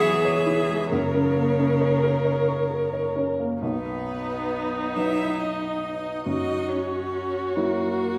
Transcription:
0, 0, Header, 1, 5, 480
1, 0, Start_track
1, 0, Key_signature, 5, "major"
1, 0, Tempo, 902256
1, 481, Time_signature, 6, 3, 24, 8
1, 2403, Tempo, 872093
1, 4421, End_track
2, 0, Start_track
2, 0, Title_t, "Violin"
2, 0, Program_c, 0, 40
2, 3, Note_on_c, 0, 76, 87
2, 477, Note_off_c, 0, 76, 0
2, 480, Note_on_c, 0, 73, 82
2, 1661, Note_off_c, 0, 73, 0
2, 1923, Note_on_c, 0, 71, 72
2, 2645, Note_on_c, 0, 76, 73
2, 2653, Note_off_c, 0, 71, 0
2, 2883, Note_on_c, 0, 75, 57
2, 2891, Note_off_c, 0, 76, 0
2, 3354, Note_off_c, 0, 75, 0
2, 3357, Note_on_c, 0, 75, 75
2, 3600, Note_on_c, 0, 73, 64
2, 3608, Note_off_c, 0, 75, 0
2, 4078, Note_on_c, 0, 70, 69
2, 4086, Note_off_c, 0, 73, 0
2, 4421, Note_off_c, 0, 70, 0
2, 4421, End_track
3, 0, Start_track
3, 0, Title_t, "Viola"
3, 0, Program_c, 1, 41
3, 0, Note_on_c, 1, 68, 100
3, 461, Note_off_c, 1, 68, 0
3, 486, Note_on_c, 1, 70, 74
3, 1797, Note_off_c, 1, 70, 0
3, 1929, Note_on_c, 1, 63, 63
3, 3346, Note_off_c, 1, 63, 0
3, 3367, Note_on_c, 1, 66, 72
3, 4421, Note_off_c, 1, 66, 0
3, 4421, End_track
4, 0, Start_track
4, 0, Title_t, "Grand piano"
4, 0, Program_c, 2, 0
4, 0, Control_c, 2, 64, 127
4, 0, Note_on_c, 2, 40, 81
4, 0, Note_on_c, 2, 52, 73
4, 0, Note_on_c, 2, 56, 67
4, 0, Note_on_c, 2, 64, 75
4, 0, Note_on_c, 2, 68, 61
4, 0, Note_on_c, 2, 73, 63
4, 0, Note_on_c, 2, 76, 63
4, 0, Note_on_c, 2, 85, 52
4, 15, Note_off_c, 2, 68, 0
4, 15, Note_on_c, 2, 68, 65
4, 78, Note_off_c, 2, 85, 0
4, 133, Note_off_c, 2, 73, 0
4, 133, Note_on_c, 2, 73, 58
4, 199, Note_off_c, 2, 68, 0
4, 247, Note_off_c, 2, 64, 0
4, 247, Note_on_c, 2, 64, 53
4, 318, Note_off_c, 2, 73, 0
4, 367, Note_off_c, 2, 56, 0
4, 367, Note_on_c, 2, 56, 46
4, 436, Note_off_c, 2, 64, 0
4, 461, Note_off_c, 2, 40, 0
4, 485, Note_off_c, 2, 56, 0
4, 489, Note_on_c, 2, 42, 65
4, 492, Control_c, 2, 64, 0
4, 493, Note_off_c, 2, 52, 0
4, 494, Note_off_c, 2, 76, 0
4, 595, Control_c, 2, 64, 127
4, 609, Note_on_c, 2, 49, 49
4, 726, Note_on_c, 2, 58, 50
4, 797, Note_off_c, 2, 49, 0
4, 846, Note_on_c, 2, 61, 52
4, 916, Note_off_c, 2, 58, 0
4, 966, Note_on_c, 2, 73, 53
4, 1036, Note_off_c, 2, 61, 0
4, 1082, Note_on_c, 2, 70, 55
4, 1156, Note_off_c, 2, 73, 0
4, 1197, Note_on_c, 2, 73, 54
4, 1274, Note_off_c, 2, 70, 0
4, 1320, Note_on_c, 2, 85, 49
4, 1391, Note_off_c, 2, 73, 0
4, 1440, Note_on_c, 2, 70, 47
4, 1513, Note_off_c, 2, 85, 0
4, 1561, Note_on_c, 2, 73, 46
4, 1633, Note_off_c, 2, 70, 0
4, 1680, Note_on_c, 2, 61, 50
4, 1755, Note_off_c, 2, 73, 0
4, 1808, Note_on_c, 2, 58, 46
4, 1875, Note_off_c, 2, 61, 0
4, 1908, Note_off_c, 2, 42, 0
4, 1926, Note_on_c, 2, 35, 47
4, 1927, Note_off_c, 2, 58, 0
4, 1934, Control_c, 2, 64, 0
4, 2034, Control_c, 2, 64, 127
4, 2626, Note_off_c, 2, 35, 0
4, 2649, Note_on_c, 2, 54, 42
4, 2652, Note_on_c, 2, 63, 36
4, 2655, Note_on_c, 2, 71, 43
4, 3345, Note_off_c, 2, 54, 0
4, 3347, Note_off_c, 2, 63, 0
4, 3348, Note_off_c, 2, 71, 0
4, 3363, Note_on_c, 2, 42, 51
4, 3375, Control_c, 2, 64, 0
4, 3458, Control_c, 2, 64, 127
4, 4056, Note_off_c, 2, 42, 0
4, 4081, Note_on_c, 2, 54, 39
4, 4082, Note_on_c, 2, 64, 43
4, 4087, Note_on_c, 2, 73, 45
4, 4421, Note_off_c, 2, 54, 0
4, 4421, Note_off_c, 2, 64, 0
4, 4421, Note_off_c, 2, 73, 0
4, 4421, End_track
5, 0, Start_track
5, 0, Title_t, "Cello"
5, 0, Program_c, 3, 42
5, 0, Note_on_c, 3, 52, 74
5, 478, Note_on_c, 3, 49, 76
5, 486, Note_off_c, 3, 52, 0
5, 1681, Note_off_c, 3, 49, 0
5, 1924, Note_on_c, 3, 59, 59
5, 2653, Note_on_c, 3, 64, 63
5, 2661, Note_off_c, 3, 59, 0
5, 2895, Note_on_c, 3, 63, 53
5, 2903, Note_off_c, 3, 64, 0
5, 3368, Note_off_c, 3, 63, 0
5, 3374, Note_on_c, 3, 63, 63
5, 3608, Note_on_c, 3, 61, 52
5, 3616, Note_off_c, 3, 63, 0
5, 4083, Note_on_c, 3, 58, 67
5, 4091, Note_off_c, 3, 61, 0
5, 4421, Note_off_c, 3, 58, 0
5, 4421, End_track
0, 0, End_of_file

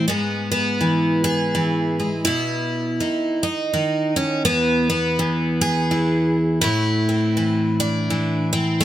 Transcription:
0, 0, Header, 1, 2, 480
1, 0, Start_track
1, 0, Key_signature, 0, "minor"
1, 0, Tempo, 728155
1, 59, Time_signature, 3, 2, 24, 8
1, 5830, End_track
2, 0, Start_track
2, 0, Title_t, "Twelve-string acoustic guitar"
2, 0, Program_c, 0, 25
2, 51, Note_on_c, 0, 59, 80
2, 62, Note_on_c, 0, 44, 69
2, 332, Note_off_c, 0, 59, 0
2, 340, Note_on_c, 0, 59, 79
2, 532, Note_on_c, 0, 52, 53
2, 818, Note_on_c, 0, 68, 79
2, 1012, Note_off_c, 0, 52, 0
2, 1020, Note_on_c, 0, 52, 58
2, 1307, Note_off_c, 0, 59, 0
2, 1316, Note_on_c, 0, 56, 41
2, 1477, Note_off_c, 0, 52, 0
2, 1478, Note_off_c, 0, 44, 0
2, 1478, Note_off_c, 0, 56, 0
2, 1479, Note_off_c, 0, 68, 0
2, 1482, Note_on_c, 0, 64, 94
2, 1497, Note_on_c, 0, 47, 66
2, 1978, Note_off_c, 0, 47, 0
2, 1981, Note_on_c, 0, 51, 54
2, 2261, Note_on_c, 0, 63, 76
2, 2265, Note_off_c, 0, 64, 0
2, 2455, Note_off_c, 0, 51, 0
2, 2463, Note_on_c, 0, 51, 59
2, 2742, Note_off_c, 0, 63, 0
2, 2744, Note_on_c, 0, 61, 75
2, 2919, Note_off_c, 0, 51, 0
2, 2931, Note_off_c, 0, 61, 0
2, 2933, Note_on_c, 0, 59, 88
2, 2940, Note_on_c, 0, 40, 67
2, 3220, Note_off_c, 0, 59, 0
2, 3228, Note_on_c, 0, 59, 77
2, 3414, Note_off_c, 0, 40, 0
2, 3422, Note_on_c, 0, 40, 64
2, 3701, Note_on_c, 0, 68, 89
2, 3896, Note_on_c, 0, 52, 55
2, 4191, Note_off_c, 0, 59, 0
2, 4356, Note_off_c, 0, 52, 0
2, 4358, Note_off_c, 0, 68, 0
2, 4360, Note_on_c, 0, 64, 93
2, 4376, Note_on_c, 0, 45, 64
2, 4381, Note_off_c, 0, 40, 0
2, 4673, Note_on_c, 0, 60, 44
2, 4857, Note_on_c, 0, 52, 53
2, 5139, Note_off_c, 0, 60, 0
2, 5141, Note_on_c, 0, 62, 81
2, 5334, Note_off_c, 0, 52, 0
2, 5342, Note_on_c, 0, 52, 57
2, 5618, Note_off_c, 0, 62, 0
2, 5621, Note_on_c, 0, 60, 75
2, 5624, Note_off_c, 0, 64, 0
2, 5798, Note_off_c, 0, 52, 0
2, 5805, Note_on_c, 0, 57, 86
2, 5813, Note_off_c, 0, 60, 0
2, 5818, Note_off_c, 0, 45, 0
2, 5830, Note_off_c, 0, 57, 0
2, 5830, End_track
0, 0, End_of_file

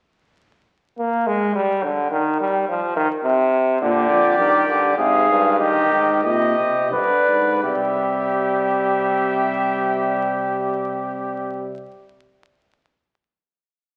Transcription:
0, 0, Header, 1, 5, 480
1, 0, Start_track
1, 0, Tempo, 567644
1, 350, Time_signature, 3, 2, 24, 8
1, 3706, Tempo, 604230
1, 4666, Tempo, 643777
1, 5146, Tempo, 699301
1, 6106, Tempo, 733496
1, 10251, End_track
2, 0, Start_track
2, 0, Title_t, "Cornet"
2, 0, Program_c, 0, 56
2, 3224, Note_on_c, 0, 74, 76
2, 4150, Note_off_c, 0, 74, 0
2, 4175, Note_on_c, 0, 77, 72
2, 4655, Note_off_c, 0, 77, 0
2, 4662, Note_on_c, 0, 75, 69
2, 5135, Note_off_c, 0, 75, 0
2, 5145, Note_on_c, 0, 75, 70
2, 5603, Note_off_c, 0, 75, 0
2, 5606, Note_on_c, 0, 74, 62
2, 6093, Note_off_c, 0, 74, 0
2, 6108, Note_on_c, 0, 76, 64
2, 8816, Note_off_c, 0, 76, 0
2, 10251, End_track
3, 0, Start_track
3, 0, Title_t, "Trumpet"
3, 0, Program_c, 1, 56
3, 3228, Note_on_c, 1, 67, 80
3, 4152, Note_off_c, 1, 67, 0
3, 4184, Note_on_c, 1, 68, 76
3, 4659, Note_off_c, 1, 68, 0
3, 4666, Note_on_c, 1, 67, 81
3, 5137, Note_off_c, 1, 67, 0
3, 5148, Note_on_c, 1, 67, 65
3, 5604, Note_off_c, 1, 67, 0
3, 5618, Note_on_c, 1, 71, 74
3, 6100, Note_off_c, 1, 71, 0
3, 6110, Note_on_c, 1, 67, 67
3, 8819, Note_off_c, 1, 67, 0
3, 10251, End_track
4, 0, Start_track
4, 0, Title_t, "Trombone"
4, 0, Program_c, 2, 57
4, 833, Note_on_c, 2, 58, 72
4, 1074, Note_on_c, 2, 56, 81
4, 1086, Note_off_c, 2, 58, 0
4, 1308, Note_off_c, 2, 56, 0
4, 1314, Note_on_c, 2, 55, 81
4, 1551, Note_on_c, 2, 50, 86
4, 1564, Note_off_c, 2, 55, 0
4, 1781, Note_off_c, 2, 50, 0
4, 1786, Note_on_c, 2, 51, 84
4, 2020, Note_off_c, 2, 51, 0
4, 2028, Note_on_c, 2, 55, 82
4, 2260, Note_off_c, 2, 55, 0
4, 2273, Note_on_c, 2, 53, 78
4, 2501, Note_off_c, 2, 53, 0
4, 2505, Note_on_c, 2, 51, 89
4, 2612, Note_off_c, 2, 51, 0
4, 2742, Note_on_c, 2, 48, 89
4, 3212, Note_off_c, 2, 48, 0
4, 3224, Note_on_c, 2, 50, 88
4, 3700, Note_off_c, 2, 50, 0
4, 3706, Note_on_c, 2, 51, 82
4, 3937, Note_off_c, 2, 51, 0
4, 3945, Note_on_c, 2, 50, 81
4, 4176, Note_off_c, 2, 50, 0
4, 4182, Note_on_c, 2, 48, 73
4, 4417, Note_off_c, 2, 48, 0
4, 4430, Note_on_c, 2, 43, 85
4, 4666, Note_off_c, 2, 43, 0
4, 4678, Note_on_c, 2, 51, 71
4, 5143, Note_off_c, 2, 51, 0
4, 5152, Note_on_c, 2, 48, 59
4, 5606, Note_off_c, 2, 48, 0
4, 5617, Note_on_c, 2, 50, 67
4, 6099, Note_off_c, 2, 50, 0
4, 6105, Note_on_c, 2, 55, 69
4, 8814, Note_off_c, 2, 55, 0
4, 10251, End_track
5, 0, Start_track
5, 0, Title_t, "Tuba"
5, 0, Program_c, 3, 58
5, 3222, Note_on_c, 3, 46, 75
5, 3446, Note_off_c, 3, 46, 0
5, 3464, Note_on_c, 3, 41, 76
5, 3712, Note_on_c, 3, 43, 75
5, 3724, Note_off_c, 3, 41, 0
5, 3936, Note_off_c, 3, 43, 0
5, 3941, Note_on_c, 3, 43, 69
5, 4171, Note_off_c, 3, 43, 0
5, 4175, Note_on_c, 3, 44, 71
5, 4655, Note_off_c, 3, 44, 0
5, 4664, Note_on_c, 3, 43, 72
5, 4897, Note_off_c, 3, 43, 0
5, 4903, Note_on_c, 3, 44, 73
5, 5141, Note_off_c, 3, 44, 0
5, 5146, Note_on_c, 3, 46, 68
5, 5371, Note_off_c, 3, 46, 0
5, 5375, Note_on_c, 3, 48, 70
5, 5605, Note_off_c, 3, 48, 0
5, 5610, Note_on_c, 3, 43, 65
5, 5719, Note_off_c, 3, 43, 0
5, 5854, Note_on_c, 3, 44, 67
5, 6101, Note_off_c, 3, 44, 0
5, 6106, Note_on_c, 3, 48, 66
5, 8815, Note_off_c, 3, 48, 0
5, 10251, End_track
0, 0, End_of_file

